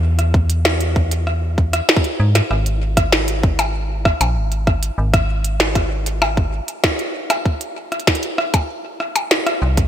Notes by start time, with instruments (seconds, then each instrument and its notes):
Already playing: fm bass E2
0.19 cross-stick, closed hi-hat
0.34 kick
0.50 closed hi-hat
0.65 cross-stick, snare
0.81 closed hi-hat
0.96 kick
1.11 closed hi-hat
1.27 cross-stick
1.58 kick
1.73 cross-stick, closed hi-hat
1.89 snare
1.97 kick
2.04 closed hi-hat
2.20 fm bass G#2
2.35 cross-stick, snare, closed hi-hat
2.51 fm bass G#1, cross-stick
2.66 closed hi-hat
2.97 kick, cross-stick, closed hi-hat
3.12 snare
3.28 closed hi-hat
3.43 kick
3.59 cross-stick, closed hi-hat, percussion blips
4.05 kick, cross-stick
4.21 fm bass A#1, closed hi-hat, percussion blips
4.36 fm bass G#1
4.52 closed hi-hat
4.67 kick, cross-stick
4.83 closed hi-hat
4.98 fm bass G#1
5.14 kick, cross-stick, closed hi-hat
5.44 closed hi-hat
5.60 snare
5.75 kick, cross-stick, closed hi-hat
6.06 closed hi-hat
6.22 cross-stick, percussion blips
6.37 kick
6.68 closed hi-hat
6.84 kick, cross-stick, snare
6.99 closed hi-hat
7.30 cross-stick, closed hi-hat, percussion blips
7.45 kick
7.61 closed hi-hat
7.92 cross-stick, closed hi-hat
8.00 closed hi-hat
8.07 kick, snare, closed hi-hat
8.15 closed hi-hat
8.23 closed hi-hat
8.38 cross-stick
8.54 kick, closed hi-hat, percussion blips
9.00 cross-stick
9.16 closed hi-hat, percussion blips
9.31 snare
9.46 cross-stick, closed hi-hat
9.62 fm bass C2
9.77 kick, closed hi-hat